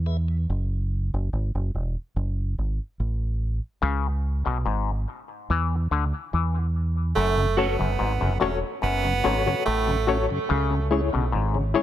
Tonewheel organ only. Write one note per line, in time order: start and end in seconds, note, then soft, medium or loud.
0.06 0.17 G#3 medium
0.06 0.17 B3 medium
0.06 0.17 E4 medium
0.28 0.38 E2 medium
0.28 0.38 B2 medium
7.37 7.47 F#2 medium
7.37 7.47 C#3 medium
7.57 7.67 A3 medium
7.57 7.68 C#4 medium
7.57 7.68 F#4 medium
7.79 7.88 F#2 medium
7.79 7.88 C#3 medium
8.21 8.30 F#2 medium
8.21 8.30 C#3 medium
8.40 8.51 A3 medium
8.40 8.51 C#4 medium
8.40 8.51 F#4 medium
9.05 9.14 F#2 medium
9.05 9.14 C#3 medium
9.24 9.34 A3 medium
9.24 9.34 C#4 medium
9.24 9.34 F#4 medium
9.46 9.55 F#2 medium
9.46 9.55 C#3 medium
9.87 9.97 F#2 medium
9.87 9.96 C#3 medium
10.07 10.17 A3 medium
10.07 10.17 C#4 medium
10.07 10.18 F#4 medium
10.31 10.39 F#2 medium
10.31 10.39 C#3 medium
10.70 10.80 C#3 medium
10.91 11.01 G#3 medium
10.91 11.01 C#4 medium
10.91 11.01 E4 medium
11.13 11.22 C#3 medium
11.55 11.64 C#3 medium
11.75 11.83 G#3 medium
11.75 11.83 C#4 medium
11.75 11.83 E4 medium